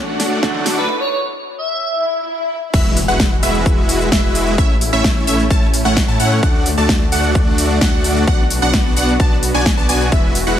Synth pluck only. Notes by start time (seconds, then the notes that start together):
2.74 E5
3.08 F#5
3.43 E5
4.12 E5
4.58 E5
4.93 E5
5.27 E5
5.51 A5
5.85 F#5
6.08 A5
6.20 F#5
6.43 F#5
6.78 A5
7.12 F#5
7.81 F#5
8.28 F#5
8.62 F#5
8.97 F#5
9.20 A5
9.54 G#5
9.78 A5
9.89 G#5
10.12 E5
10.47 F#5